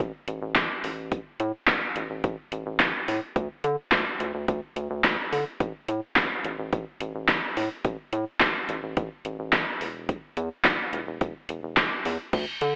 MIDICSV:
0, 0, Header, 1, 3, 480
1, 0, Start_track
1, 0, Tempo, 560748
1, 956, Time_signature, 4, 2, 24, 8
1, 10920, End_track
2, 0, Start_track
2, 0, Title_t, "Analog synth bass"
2, 0, Program_c, 0, 38
2, 0, Note_on_c, 0, 33, 104
2, 101, Note_off_c, 0, 33, 0
2, 236, Note_on_c, 0, 33, 107
2, 340, Note_off_c, 0, 33, 0
2, 356, Note_on_c, 0, 33, 105
2, 460, Note_off_c, 0, 33, 0
2, 475, Note_on_c, 0, 33, 106
2, 579, Note_off_c, 0, 33, 0
2, 717, Note_on_c, 0, 33, 99
2, 1027, Note_off_c, 0, 33, 0
2, 1197, Note_on_c, 0, 45, 105
2, 1301, Note_off_c, 0, 45, 0
2, 1436, Note_on_c, 0, 33, 107
2, 1540, Note_off_c, 0, 33, 0
2, 1677, Note_on_c, 0, 33, 100
2, 1780, Note_off_c, 0, 33, 0
2, 1797, Note_on_c, 0, 33, 92
2, 1900, Note_off_c, 0, 33, 0
2, 1917, Note_on_c, 0, 33, 115
2, 2020, Note_off_c, 0, 33, 0
2, 2157, Note_on_c, 0, 33, 100
2, 2260, Note_off_c, 0, 33, 0
2, 2277, Note_on_c, 0, 33, 103
2, 2380, Note_off_c, 0, 33, 0
2, 2394, Note_on_c, 0, 33, 106
2, 2499, Note_off_c, 0, 33, 0
2, 2637, Note_on_c, 0, 45, 104
2, 2740, Note_off_c, 0, 45, 0
2, 2876, Note_on_c, 0, 38, 101
2, 2980, Note_off_c, 0, 38, 0
2, 3117, Note_on_c, 0, 50, 103
2, 3220, Note_off_c, 0, 50, 0
2, 3357, Note_on_c, 0, 38, 99
2, 3460, Note_off_c, 0, 38, 0
2, 3595, Note_on_c, 0, 38, 101
2, 3699, Note_off_c, 0, 38, 0
2, 3716, Note_on_c, 0, 38, 93
2, 3820, Note_off_c, 0, 38, 0
2, 3838, Note_on_c, 0, 38, 107
2, 3941, Note_off_c, 0, 38, 0
2, 4075, Note_on_c, 0, 38, 98
2, 4179, Note_off_c, 0, 38, 0
2, 4196, Note_on_c, 0, 38, 97
2, 4299, Note_off_c, 0, 38, 0
2, 4315, Note_on_c, 0, 38, 107
2, 4419, Note_off_c, 0, 38, 0
2, 4557, Note_on_c, 0, 50, 96
2, 4660, Note_off_c, 0, 50, 0
2, 4797, Note_on_c, 0, 33, 108
2, 4900, Note_off_c, 0, 33, 0
2, 5037, Note_on_c, 0, 45, 98
2, 5140, Note_off_c, 0, 45, 0
2, 5277, Note_on_c, 0, 33, 104
2, 5380, Note_off_c, 0, 33, 0
2, 5518, Note_on_c, 0, 33, 100
2, 5621, Note_off_c, 0, 33, 0
2, 5638, Note_on_c, 0, 33, 103
2, 5741, Note_off_c, 0, 33, 0
2, 5758, Note_on_c, 0, 33, 107
2, 5861, Note_off_c, 0, 33, 0
2, 5998, Note_on_c, 0, 33, 105
2, 6101, Note_off_c, 0, 33, 0
2, 6118, Note_on_c, 0, 33, 96
2, 6221, Note_off_c, 0, 33, 0
2, 6235, Note_on_c, 0, 33, 106
2, 6339, Note_off_c, 0, 33, 0
2, 6478, Note_on_c, 0, 45, 106
2, 6581, Note_off_c, 0, 45, 0
2, 6717, Note_on_c, 0, 33, 109
2, 6820, Note_off_c, 0, 33, 0
2, 6956, Note_on_c, 0, 45, 101
2, 7060, Note_off_c, 0, 45, 0
2, 7197, Note_on_c, 0, 33, 105
2, 7300, Note_off_c, 0, 33, 0
2, 7437, Note_on_c, 0, 33, 102
2, 7540, Note_off_c, 0, 33, 0
2, 7558, Note_on_c, 0, 33, 92
2, 7661, Note_off_c, 0, 33, 0
2, 7678, Note_on_c, 0, 33, 107
2, 7781, Note_off_c, 0, 33, 0
2, 7918, Note_on_c, 0, 33, 97
2, 8021, Note_off_c, 0, 33, 0
2, 8038, Note_on_c, 0, 33, 96
2, 8141, Note_off_c, 0, 33, 0
2, 8156, Note_on_c, 0, 33, 108
2, 8260, Note_off_c, 0, 33, 0
2, 8398, Note_on_c, 0, 28, 97
2, 8708, Note_off_c, 0, 28, 0
2, 8876, Note_on_c, 0, 40, 107
2, 8980, Note_off_c, 0, 40, 0
2, 9116, Note_on_c, 0, 28, 105
2, 9220, Note_off_c, 0, 28, 0
2, 9356, Note_on_c, 0, 28, 103
2, 9460, Note_off_c, 0, 28, 0
2, 9477, Note_on_c, 0, 28, 101
2, 9580, Note_off_c, 0, 28, 0
2, 9598, Note_on_c, 0, 28, 107
2, 9701, Note_off_c, 0, 28, 0
2, 9837, Note_on_c, 0, 28, 105
2, 9940, Note_off_c, 0, 28, 0
2, 9956, Note_on_c, 0, 28, 101
2, 10060, Note_off_c, 0, 28, 0
2, 10075, Note_on_c, 0, 28, 104
2, 10179, Note_off_c, 0, 28, 0
2, 10318, Note_on_c, 0, 40, 108
2, 10421, Note_off_c, 0, 40, 0
2, 10556, Note_on_c, 0, 38, 106
2, 10660, Note_off_c, 0, 38, 0
2, 10798, Note_on_c, 0, 50, 101
2, 10901, Note_off_c, 0, 50, 0
2, 10920, End_track
3, 0, Start_track
3, 0, Title_t, "Drums"
3, 0, Note_on_c, 9, 36, 113
3, 0, Note_on_c, 9, 42, 67
3, 83, Note_off_c, 9, 36, 0
3, 83, Note_off_c, 9, 42, 0
3, 237, Note_on_c, 9, 42, 77
3, 322, Note_off_c, 9, 42, 0
3, 475, Note_on_c, 9, 36, 120
3, 476, Note_on_c, 9, 38, 117
3, 476, Note_on_c, 9, 39, 97
3, 476, Note_on_c, 9, 42, 91
3, 560, Note_off_c, 9, 36, 0
3, 561, Note_off_c, 9, 38, 0
3, 561, Note_off_c, 9, 39, 0
3, 562, Note_off_c, 9, 42, 0
3, 718, Note_on_c, 9, 46, 91
3, 804, Note_off_c, 9, 46, 0
3, 955, Note_on_c, 9, 42, 83
3, 956, Note_on_c, 9, 36, 111
3, 1041, Note_off_c, 9, 42, 0
3, 1042, Note_off_c, 9, 36, 0
3, 1196, Note_on_c, 9, 42, 78
3, 1281, Note_off_c, 9, 42, 0
3, 1433, Note_on_c, 9, 38, 117
3, 1433, Note_on_c, 9, 39, 95
3, 1436, Note_on_c, 9, 36, 120
3, 1438, Note_on_c, 9, 42, 71
3, 1519, Note_off_c, 9, 38, 0
3, 1519, Note_off_c, 9, 39, 0
3, 1522, Note_off_c, 9, 36, 0
3, 1523, Note_off_c, 9, 42, 0
3, 1675, Note_on_c, 9, 42, 65
3, 1761, Note_off_c, 9, 42, 0
3, 1916, Note_on_c, 9, 42, 68
3, 1917, Note_on_c, 9, 36, 111
3, 2002, Note_off_c, 9, 42, 0
3, 2003, Note_off_c, 9, 36, 0
3, 2156, Note_on_c, 9, 42, 79
3, 2242, Note_off_c, 9, 42, 0
3, 2394, Note_on_c, 9, 36, 120
3, 2395, Note_on_c, 9, 38, 122
3, 2395, Note_on_c, 9, 39, 97
3, 2396, Note_on_c, 9, 42, 92
3, 2480, Note_off_c, 9, 36, 0
3, 2481, Note_off_c, 9, 38, 0
3, 2481, Note_off_c, 9, 39, 0
3, 2482, Note_off_c, 9, 42, 0
3, 2638, Note_on_c, 9, 46, 88
3, 2724, Note_off_c, 9, 46, 0
3, 2876, Note_on_c, 9, 36, 109
3, 2876, Note_on_c, 9, 42, 80
3, 2962, Note_off_c, 9, 36, 0
3, 2962, Note_off_c, 9, 42, 0
3, 3116, Note_on_c, 9, 42, 78
3, 3202, Note_off_c, 9, 42, 0
3, 3354, Note_on_c, 9, 38, 122
3, 3354, Note_on_c, 9, 39, 98
3, 3356, Note_on_c, 9, 36, 112
3, 3358, Note_on_c, 9, 42, 71
3, 3440, Note_off_c, 9, 38, 0
3, 3440, Note_off_c, 9, 39, 0
3, 3442, Note_off_c, 9, 36, 0
3, 3444, Note_off_c, 9, 42, 0
3, 3597, Note_on_c, 9, 42, 65
3, 3682, Note_off_c, 9, 42, 0
3, 3837, Note_on_c, 9, 42, 70
3, 3838, Note_on_c, 9, 36, 116
3, 3923, Note_off_c, 9, 42, 0
3, 3924, Note_off_c, 9, 36, 0
3, 4077, Note_on_c, 9, 42, 77
3, 4163, Note_off_c, 9, 42, 0
3, 4315, Note_on_c, 9, 36, 114
3, 4317, Note_on_c, 9, 38, 121
3, 4317, Note_on_c, 9, 39, 99
3, 4318, Note_on_c, 9, 42, 93
3, 4401, Note_off_c, 9, 36, 0
3, 4402, Note_off_c, 9, 38, 0
3, 4402, Note_off_c, 9, 39, 0
3, 4403, Note_off_c, 9, 42, 0
3, 4559, Note_on_c, 9, 46, 92
3, 4645, Note_off_c, 9, 46, 0
3, 4797, Note_on_c, 9, 36, 114
3, 4797, Note_on_c, 9, 42, 82
3, 4882, Note_off_c, 9, 42, 0
3, 4883, Note_off_c, 9, 36, 0
3, 5037, Note_on_c, 9, 42, 79
3, 5122, Note_off_c, 9, 42, 0
3, 5275, Note_on_c, 9, 38, 119
3, 5275, Note_on_c, 9, 39, 95
3, 5277, Note_on_c, 9, 36, 119
3, 5279, Note_on_c, 9, 42, 73
3, 5360, Note_off_c, 9, 38, 0
3, 5360, Note_off_c, 9, 39, 0
3, 5363, Note_off_c, 9, 36, 0
3, 5365, Note_off_c, 9, 42, 0
3, 5517, Note_on_c, 9, 42, 65
3, 5602, Note_off_c, 9, 42, 0
3, 5757, Note_on_c, 9, 42, 72
3, 5758, Note_on_c, 9, 36, 115
3, 5843, Note_off_c, 9, 42, 0
3, 5844, Note_off_c, 9, 36, 0
3, 5996, Note_on_c, 9, 42, 82
3, 6082, Note_off_c, 9, 42, 0
3, 6235, Note_on_c, 9, 36, 115
3, 6236, Note_on_c, 9, 38, 123
3, 6236, Note_on_c, 9, 39, 99
3, 6237, Note_on_c, 9, 42, 91
3, 6321, Note_off_c, 9, 36, 0
3, 6322, Note_off_c, 9, 38, 0
3, 6322, Note_off_c, 9, 39, 0
3, 6322, Note_off_c, 9, 42, 0
3, 6478, Note_on_c, 9, 46, 89
3, 6564, Note_off_c, 9, 46, 0
3, 6716, Note_on_c, 9, 42, 82
3, 6717, Note_on_c, 9, 36, 113
3, 6802, Note_off_c, 9, 36, 0
3, 6802, Note_off_c, 9, 42, 0
3, 6956, Note_on_c, 9, 42, 77
3, 7042, Note_off_c, 9, 42, 0
3, 7194, Note_on_c, 9, 38, 122
3, 7194, Note_on_c, 9, 39, 102
3, 7197, Note_on_c, 9, 36, 118
3, 7198, Note_on_c, 9, 42, 72
3, 7279, Note_off_c, 9, 38, 0
3, 7279, Note_off_c, 9, 39, 0
3, 7282, Note_off_c, 9, 36, 0
3, 7284, Note_off_c, 9, 42, 0
3, 7436, Note_on_c, 9, 42, 65
3, 7522, Note_off_c, 9, 42, 0
3, 7677, Note_on_c, 9, 42, 68
3, 7678, Note_on_c, 9, 36, 114
3, 7762, Note_off_c, 9, 42, 0
3, 7764, Note_off_c, 9, 36, 0
3, 7917, Note_on_c, 9, 42, 80
3, 8003, Note_off_c, 9, 42, 0
3, 8155, Note_on_c, 9, 36, 117
3, 8156, Note_on_c, 9, 38, 121
3, 8156, Note_on_c, 9, 39, 99
3, 8156, Note_on_c, 9, 42, 89
3, 8241, Note_off_c, 9, 36, 0
3, 8241, Note_off_c, 9, 38, 0
3, 8241, Note_off_c, 9, 39, 0
3, 8242, Note_off_c, 9, 42, 0
3, 8398, Note_on_c, 9, 46, 89
3, 8483, Note_off_c, 9, 46, 0
3, 8636, Note_on_c, 9, 42, 83
3, 8637, Note_on_c, 9, 36, 110
3, 8722, Note_off_c, 9, 36, 0
3, 8722, Note_off_c, 9, 42, 0
3, 8876, Note_on_c, 9, 42, 78
3, 8961, Note_off_c, 9, 42, 0
3, 9113, Note_on_c, 9, 38, 121
3, 9113, Note_on_c, 9, 39, 95
3, 9116, Note_on_c, 9, 36, 118
3, 9117, Note_on_c, 9, 42, 74
3, 9198, Note_off_c, 9, 38, 0
3, 9198, Note_off_c, 9, 39, 0
3, 9202, Note_off_c, 9, 36, 0
3, 9203, Note_off_c, 9, 42, 0
3, 9356, Note_on_c, 9, 42, 65
3, 9441, Note_off_c, 9, 42, 0
3, 9596, Note_on_c, 9, 42, 68
3, 9598, Note_on_c, 9, 36, 113
3, 9682, Note_off_c, 9, 42, 0
3, 9683, Note_off_c, 9, 36, 0
3, 9835, Note_on_c, 9, 42, 79
3, 9921, Note_off_c, 9, 42, 0
3, 10075, Note_on_c, 9, 36, 120
3, 10075, Note_on_c, 9, 38, 118
3, 10075, Note_on_c, 9, 39, 101
3, 10076, Note_on_c, 9, 42, 93
3, 10160, Note_off_c, 9, 36, 0
3, 10160, Note_off_c, 9, 38, 0
3, 10160, Note_off_c, 9, 39, 0
3, 10161, Note_off_c, 9, 42, 0
3, 10317, Note_on_c, 9, 46, 88
3, 10403, Note_off_c, 9, 46, 0
3, 10556, Note_on_c, 9, 36, 109
3, 10556, Note_on_c, 9, 42, 83
3, 10556, Note_on_c, 9, 49, 107
3, 10641, Note_off_c, 9, 42, 0
3, 10641, Note_off_c, 9, 49, 0
3, 10642, Note_off_c, 9, 36, 0
3, 10795, Note_on_c, 9, 42, 80
3, 10881, Note_off_c, 9, 42, 0
3, 10920, End_track
0, 0, End_of_file